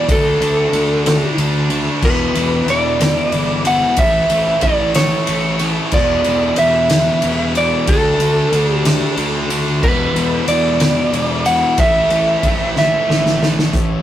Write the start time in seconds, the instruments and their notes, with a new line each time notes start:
Already playing: lead electric guitar D5
0.08 fingered electric bass D2, distorted electric guitar D3 A3 D4, lead electric guitar A4, kick, ride
0.40 fingered electric bass D2, distorted electric guitar D3 A3 D4, ride
0.73 fingered electric bass D2, distorted electric guitar D3 A3 D4, ride
1.05 distorted electric guitar D3 A3 D4, snare, ride
1.37 fingered electric bass D2, distorted electric guitar D3 A3 D4, ride
1.70 distorted electric guitar D3 A3 D4, ride
2.02 fingered electric bass E1, distorted electric guitar E2 B2 E3, lead electric guitar B4, kick, crash
2.34 fingered electric bass E1, distorted electric guitar E2 B2 E3, ride
2.66 fingered electric bass E1, distorted electric guitar E2 B2 E3, ride
2.70 lead electric guitar D5
2.99 distorted electric guitar E2 B2 E3, snare, ride
3.32 fingered electric bass G1, distorted electric guitar E2 B2 E3, ride
3.65 distorted electric guitar E2 B2 E3, lead electric guitar F#5, ride
3.97 fingered electric bass A1, distorted electric guitar A2 E3 A3, lead electric guitar E5, kick, ride
4.30 fingered electric bass A1, distorted electric guitar A2 E3 A3, ride
4.61 fingered electric bass A1, distorted electric guitar A2 E3 A3, lead electric guitar D5, kick, ride
4.95 distorted electric guitar A2 E3 A3, lead electric guitar C#5, snare, ride
5.27 fingered electric bass A1, distorted electric guitar A2 E3 A3, ride
5.59 distorted electric guitar A2 E3 A3, ride
5.92 fingered electric bass E1, distorted electric guitar E2 B2 E3, lead electric guitar D5, kick, crash
6.24 fingered electric bass E1, distorted electric guitar E2 B2 E3, ride
6.56 fingered electric bass E1, distorted electric guitar E2 B2 E3, lead electric guitar E5, ride
6.89 distorted electric guitar E2 B2 E3, snare, ride
7.22 fingered electric bass E1, distorted electric guitar E2 B2 E3, ride
7.55 distorted electric guitar E2 B2 E3, lead electric guitar D5, ride
7.87 fingered electric bass D2, distorted electric guitar D3 A3 D4, lead electric guitar A4, kick, ride
8.19 fingered electric bass D2, distorted electric guitar D3 A3 D4, ride
8.52 fingered electric bass D2, distorted electric guitar D3 A3 D4, ride
8.74 lead electric guitar G4
8.84 distorted electric guitar D3 A3 D4, snare, ride
9.16 fingered electric bass D2, distorted electric guitar D3 A3 D4, ride
9.49 distorted electric guitar D3 A3 D4, ride
9.81 fingered electric bass E1, distorted electric guitar E2 B2 E3, lead electric guitar B4, kick, crash
10.14 fingered electric bass E1, distorted electric guitar E2 B2 E3, ride
10.47 fingered electric bass E1, distorted electric guitar E2 B2 E3, lead electric guitar D5, ride
10.80 distorted electric guitar E2 B2 E3, snare, ride
11.12 fingered electric bass E1, distorted electric guitar E2 B2 E3, ride
11.45 distorted electric guitar E2 B2 E3, lead electric guitar F#5, ride
11.78 fingered electric bass A1, distorted electric guitar A2 E3 A3, lead electric guitar E5, kick, ride
12.10 fingered electric bass A1, distorted electric guitar A2 E3 A3, ride
12.42 fingered electric bass A1, distorted electric guitar A2 E3 A3, kick, ride
12.75 distorted electric guitar A2 E3 A3, lead electric guitar E5, snare
13.08 fingered electric bass A1, distorted electric guitar A2 E3 A3, snare
13.26 snare
13.40 distorted electric guitar A2 E3 A3, snare
13.59 snare
13.72 fingered electric bass A1, distorted electric guitar A2 E3 A3, clean electric guitar C#4 E4, kick, closed hi-hat